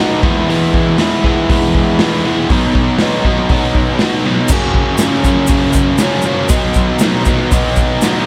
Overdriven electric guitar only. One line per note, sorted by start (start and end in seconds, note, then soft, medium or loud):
0.00 0.21 B2 medium
0.00 0.21 F#3 medium
0.00 0.24 B3 loud
0.00 0.21 D#4 loud
0.23 0.47 E3 loud
0.23 0.47 G#3 loud
0.23 0.49 B3 loud
0.23 0.48 E4 loud
0.48 0.98 E3 loud
0.48 0.99 G#3 loud
0.48 1.00 B3 loud
0.48 1.00 E4 loud
1.00 1.23 E3 medium
1.00 1.24 G#3 loud
1.00 1.25 B3 loud
1.00 1.25 E4 loud
1.24 1.49 E3 medium
1.24 1.49 G#3 medium
1.24 1.50 B3 medium
1.24 1.50 E4 loud
1.50 1.99 E3 loud
1.50 2.00 G#3 loud
1.50 2.01 B3 medium
1.50 2.00 E4 loud
2.01 2.24 E3 medium
2.01 2.25 G#3 medium
2.01 2.25 B3 medium
2.01 2.25 E4 loud
2.25 2.48 E3 loud
2.25 2.49 G#3 medium
2.25 2.49 B3 medium
2.25 2.49 E4 loud
2.51 2.99 B2 loud
2.51 3.01 F#3 loud
2.51 3.00 B3 loud
2.51 3.00 D#4 loud
3.01 3.24 B2 medium
3.01 3.26 F#3 loud
3.01 3.25 B3 loud
3.01 3.25 D#4 medium
3.25 3.50 B2 medium
3.25 3.52 F#3 medium
3.25 3.51 B3 medium
3.25 3.52 D#4 medium
3.51 4.00 B2 loud
3.51 4.02 F#3 loud
3.51 4.02 B3 loud
3.51 4.01 D#4 loud
4.02 4.25 B2 medium
4.02 4.25 F#3 loud
4.02 4.25 B3 loud
4.02 4.26 D#4 medium
4.25 4.49 B2 medium
4.25 4.52 F#3 medium
4.25 4.49 B3 medium
4.25 4.50 D#4 medium
4.52 5.00 F#2 medium
4.52 5.01 C#3 loud
4.52 5.02 F#3 loud
4.52 5.02 A#3 loud
4.52 5.02 C#4 loud
5.01 5.23 F#2 medium
5.01 5.24 C#3 medium
5.01 5.24 F#3 loud
5.01 5.25 A#3 loud
5.01 5.25 C#4 loud
5.24 5.47 F#2 medium
5.24 5.48 C#3 medium
5.24 5.48 F#3 medium
5.24 5.50 A#3 medium
5.24 5.49 C#4 loud
5.48 5.99 F#2 medium
5.48 6.00 C#3 loud
5.48 6.01 F#3 loud
5.48 6.00 A#3 loud
5.48 6.01 C#4 loud
6.00 6.23 F#2 loud
6.00 6.24 C#3 medium
6.00 6.25 F#3 loud
6.00 6.25 A#3 loud
6.00 6.25 C#4 loud
6.24 6.49 F#2 medium
6.24 6.49 C#3 medium
6.24 6.48 F#3 loud
6.24 6.50 A#3 medium
6.24 6.50 C#4 loud
6.49 7.00 B2 loud
6.49 7.01 F#3 loud
6.49 7.02 B3 loud
6.49 7.01 D#4 loud
7.01 7.26 B2 medium
7.01 7.27 F#3 loud
7.01 7.27 B3 loud
7.01 7.28 D#4 loud
7.27 7.51 B2 medium
7.27 7.52 F#3 medium
7.27 7.52 B3 loud
7.27 7.52 D#4 medium
7.52 8.02 B2 loud
7.52 8.02 F#3 loud
7.52 8.03 B3 loud
7.52 8.03 D#4 loud
8.03 8.26 B2 loud
8.03 8.26 F#3 loud
8.03 8.26 B3 medium
8.03 8.26 D#4 loud